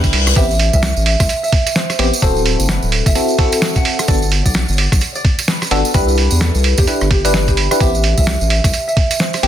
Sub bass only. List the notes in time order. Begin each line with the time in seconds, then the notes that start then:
0.04 G1
0.13 C2
0.36 A1
0.73 C2
0.97 A1
1.20 C2
1.99 A1
2.22 D1
2.60 F#1
2.83 D1
3.06 F#1
4.08 G1
4.46 B1
4.69 G1
4.92 B1
5.71 G1
5.94 C2
6.32 E2
6.55 C2
6.78 E2
7.01 G1
7.80 A1
8.18 C2
8.41 A1
8.64 C2
9.43 A1